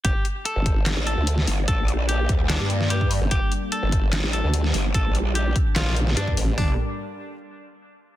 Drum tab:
HH |x-x-x-x-x-x-x-o-|x-x-x-x-x-x-x-o-|x-x-x-x-x-x-x-o-|x-x-x-x-x-x-x-o-|
CP |--------x-------|--------x-------|--------x-------|--------x-------|
SD |--------o----o--|--------o--o----|--------o----o--|--------o--o----|
FT |----------------|----------------|----------------|----------------|
BD |o-----o---------|o-----o------o--|o-----o---------|o-----o------o--|

HH |o---------------|
CP |----------------|
SD |----------------|
FT |o---------------|
BD |o---------------|